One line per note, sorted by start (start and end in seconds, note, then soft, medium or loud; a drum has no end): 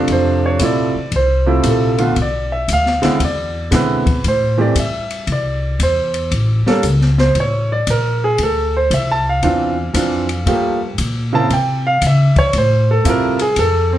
0.00 0.56 C3 medium
0.00 0.57 F3 medium
0.00 0.57 A3 medium
0.00 0.57 D4 medium
0.08 0.58 F2 medium
0.08 kick soft
0.08 ride medium
0.12 0.44 C5 medium
0.46 0.61 C#5 medium
0.59 0.92 A#1 medium
0.59 0.91 C3 medium
0.59 0.92 F3 medium
0.59 0.92 A3 medium
0.59 0.92 E4 medium
0.59 kick soft
0.59 hi-hat pedal soft
0.59 ride medium
0.65 1.11 D5 medium
0.95 muted upright bass stroke soft
1.12 1.62 C2 medium
1.12 kick soft
1.12 ride soft
1.16 1.62 C5 medium
1.46 1.95 C3 medium
1.46 1.95 F3 medium
1.46 1.95 A3 medium
1.46 1.96 E4 medium
1.63 2.14 A#1 medium
1.63 kick soft
1.63 hi-hat pedal soft
1.63 ride medium
1.68 2.15 A4 medium
1.98 2.14 D3 medium
1.98 2.14 A3 medium
1.98 2.14 B3 medium
1.98 2.15 F4 medium
1.98 ride soft
2.16 2.67 B1 medium
2.16 kick soft
2.16 ride medium
2.22 2.53 D5 medium
2.52 2.68 E5 medium
2.68 3.00 D2 medium
2.68 kick soft
2.68 hi-hat pedal medium
2.68 ride medium
2.73 3.19 F5 medium
2.86 snare soft
3.02 3.18 D3 medium
3.02 3.18 G#3 medium
3.02 3.18 C4 medium
3.02 3.18 E4 medium
3.02 muted upright bass stroke soft
3.02 snare soft
3.02 ride soft
3.20 3.70 E2 medium
3.20 kick soft
3.20 ride medium
3.25 3.71 D5 medium
3.71 4.22 B2 medium
3.71 4.03 D3 medium
3.71 4.03 G#3 soft
3.71 4.03 C4 medium
3.71 4.03 E4 medium
3.71 4.22 B4 medium
3.71 kick soft
3.71 snare soft
3.71 hi-hat pedal soft
3.71 ride medium
4.06 kick medium
4.06 ride soft
4.24 4.74 A2 medium
4.24 kick soft
4.24 ride medium
4.28 4.60 C5 medium
4.58 4.74 E3 medium
4.58 4.74 A3 medium
4.58 4.74 C4 medium
4.58 4.74 G4 medium
4.58 4.76 D5 medium
4.75 5.26 G2 medium
4.75 kick soft
4.75 hi-hat pedal medium
4.75 ride medium
4.80 5.26 E5 medium
5.10 ride soft
5.27 5.78 C2 medium
5.27 kick soft
5.27 ride medium
5.32 5.78 D5 medium
5.79 6.30 E2 medium
5.79 6.30 C5 medium
5.79 kick soft
5.79 hi-hat pedal soft
5.79 ride medium
6.14 ride soft
6.31 6.64 A1 medium
6.31 kick soft
6.31 ride medium
6.67 6.82 G3 medium
6.67 6.82 A#3 medium
6.67 6.82 C#4 medium
6.67 6.82 A4 medium
6.67 muted upright bass stroke soft
6.67 snare soft
6.83 7.34 C#2 medium
6.83 kick soft
6.83 hi-hat pedal medium
6.83 ride medium
7.01 snare soft
7.18 7.36 C5 medium
7.18 snare soft
7.35 7.85 A1 medium
7.35 kick soft
7.35 ride soft
7.40 7.71 C#5 medium
7.72 7.88 D5 medium
7.87 8.37 A#1 medium
7.87 8.22 A#4 medium
7.87 kick soft
7.87 hi-hat pedal medium
7.87 ride medium
8.24 8.40 G#4 medium
8.38 8.89 D2 medium
8.38 kick soft
8.38 ride medium
8.43 8.75 A4 medium
8.77 8.92 C5 medium
8.90 9.41 C2 medium
8.90 9.09 E5 medium
8.90 kick soft
8.90 hi-hat pedal medium
8.90 ride medium
9.11 9.27 A5 medium
9.29 10.56 F5 medium
9.43 9.93 E2 medium
9.43 9.74 E3 medium
9.43 9.74 C4 medium
9.43 9.74 D4 medium
9.43 9.75 F4 medium
9.43 kick soft
9.43 ride medium
9.93 10.45 F2 medium
9.93 10.25 E3 medium
9.93 10.26 C4 medium
9.93 10.26 D4 medium
9.93 10.26 F4 medium
9.93 kick soft
9.93 hi-hat pedal medium
9.93 ride medium
10.29 ride soft
10.46 10.97 G2 medium
10.46 10.78 F3 medium
10.46 10.78 A3 medium
10.46 10.78 A#3 medium
10.46 10.79 G4 medium
10.46 kick soft
10.46 ride soft
10.98 11.49 A#2 medium
10.98 kick soft
10.98 hi-hat pedal medium
10.98 ride medium
11.33 11.48 C#3 medium
11.33 11.49 A#3 medium
11.33 11.49 C4 medium
11.33 11.49 E4 medium
11.33 11.51 A5 loud
11.50 12.00 C3 medium
11.50 11.85 G5 medium
11.50 kick soft
11.50 ride soft
11.87 12.02 F5 medium
12.02 12.34 C#3 medium
12.02 kick soft
12.02 hi-hat pedal medium
12.02 ride medium
12.07 12.38 E5 medium
12.36 12.54 C#5 loud
12.36 muted upright bass stroke soft
12.36 kick medium
12.36 ride soft
12.53 13.04 A2 medium
12.53 kick soft
12.53 ride medium
12.58 12.90 C5 medium
12.91 13.06 A4 medium
13.04 13.56 G2 medium
13.04 13.36 C3 medium
13.04 13.37 F3 medium
13.04 13.37 A3 medium
13.04 13.37 E4 medium
13.04 kick soft
13.04 hi-hat pedal soft
13.04 ride medium
13.09 13.41 A#4 medium
13.39 13.58 G#4 medium
13.39 ride soft
13.56 13.98 F2 medium
13.56 13.92 A4 medium
13.56 kick soft
13.56 ride medium
13.93 13.98 C4 medium